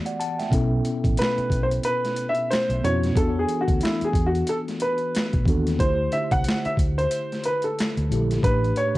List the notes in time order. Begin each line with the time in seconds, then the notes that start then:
0.06 D5 F#5, closed hi-hat
0.20 F#5 A5, closed hi-hat
0.39 E5 G5, snare, closed hi-hat
0.50 B1 B2 B3 C#4 E4, kick, closed hi-hat
0.54 A4
0.85 closed hi-hat
1.04 A1, kick, closed hi-hat
1.17 B4, closed hi-hat
1.22 finger snap, snare
1.38 muted fretless electric bass stroke, closed hi-hat
1.50 B1, kick, closed hi-hat
1.63 C5
1.71 closed hi-hat
1.83 B4, closed hi-hat
2.05 snare, closed hi-hat
2.16 closed hi-hat
2.29 E5
2.35 closed hi-hat
2.51 C5, finger snap, snare, closed hi-hat
2.70 B1, closed hi-hat
2.81 F2 B2 B3 C#4 E4 C#5, closed hi-hat
2.86 F#4
3.03 snare, closed hi-hat
3.14 E2 E3 B3 D4 F#4 A4, kick, closed hi-hat
3.19 G#4
3.25 A4
3.39 G#4
3.48 closed hi-hat
3.61 F#4
3.68 D2, kick, closed hi-hat
3.81 E4, closed hi-hat
3.85 finger snap, snare
4.01 G#4, muted fretless electric bass stroke, closed hi-hat
4.13 E2, kick, closed hi-hat
4.26 F#4
4.35 closed hi-hat
4.47 A4, closed hi-hat
4.68 snare, closed hi-hat
4.80 B4, closed hi-hat
4.98 closed hi-hat
5.15 finger snap, snare, closed hi-hat
5.33 B1, kick, closed hi-hat
5.45 D#2 E3 B3 D4 F#4, kick, closed hi-hat
5.50 A4
5.67 snare, closed hi-hat
5.78 D2 D3 A3 E4 G4 C5, kick, closed hi-hat
5.82 C5
6.12 E5, closed hi-hat
6.31 C2 F#5, kick, closed hi-hat
6.44 closed hi-hat
6.49 finger snap, snare
6.65 E5, muted fretless electric bass stroke, closed hi-hat
6.77 D2, kick, closed hi-hat
6.98 C5, closed hi-hat
7.11 closed hi-hat
7.32 snare, closed hi-hat
7.44 B4, closed hi-hat
7.62 A4, closed hi-hat
7.79 finger snap, snare, closed hi-hat
7.97 D2, closed hi-hat
8.09 A#1 D3 A3 E4 G4, closed hi-hat
8.14 A4
8.31 snare, closed hi-hat
8.42 A1 A2 A3 D4 G4 B4, kick, closed hi-hat
8.46 B4
8.64 closed hi-hat
8.76 C#5, closed hi-hat